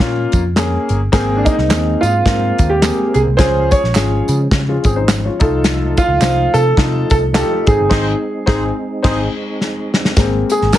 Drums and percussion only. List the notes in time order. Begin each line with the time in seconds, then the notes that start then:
0.00 kick, snare, closed hi-hat
0.32 kick, closed hi-hat, tambourine
0.56 snare, clap, closed hi-hat, tambourine
0.89 closed hi-hat
1.13 kick, snare, closed hi-hat, tambourine
1.46 kick, closed hi-hat, tambourine
1.58 snare
1.70 snare, clap, closed hi-hat, tambourine
2.03 closed hi-hat, tambourine
2.26 kick, snare, closed hi-hat, tambourine
2.58 kick, closed hi-hat, tambourine
2.82 snare, clap, closed hi-hat, tambourine
3.14 closed hi-hat, tambourine
3.39 kick, snare, closed hi-hat, tambourine
3.71 kick, closed hi-hat, tambourine
3.84 snare
3.95 snare, clap, closed hi-hat, tambourine
4.28 closed hi-hat, tambourine
4.51 kick, snare, closed hi-hat, tambourine
4.84 kick, closed hi-hat, tambourine
5.08 snare, clap, closed hi-hat, tambourine
5.40 kick, closed hi-hat, tambourine
5.64 snare, closed hi-hat, tambourine
5.97 kick, closed hi-hat, tambourine
6.21 snare, clap, closed hi-hat, tambourine
6.54 closed hi-hat, tambourine
6.77 kick, snare, closed hi-hat
7.10 kick, closed hi-hat, tambourine
7.34 snare, clap, closed hi-hat, tambourine
7.67 kick, closed hi-hat, tambourine
7.91 kick, snare, crash
8.47 kick, snare
9.04 kick, snare, crash
9.61 snare
9.94 snare
10.05 snare
10.17 kick, snare, closed hi-hat, tambourine
10.50 closed hi-hat, tambourine
10.62 snare
10.73 snare, clap, closed hi-hat, tambourine